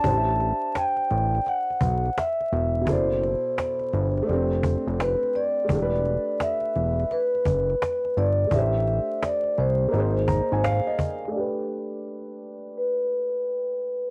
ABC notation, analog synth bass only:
X:1
M:4/4
L:1/16
Q:"Swing 16ths" 1/4=85
K:G
V:1 name="Analog synth bass" clef=bass
A,,,3 z3 A,,,2 z2 B,,,2 z2 E,,,2 | F,,,3 z3 G,,,2 =F,,,3 F,,,2 z3 | E,,,3 z3 E,,,2 z2 F,,,2 z2 G,,,2 | A,,,3 z3 C,,2 _A,,,3 A,,,2 z3 |
z16 |]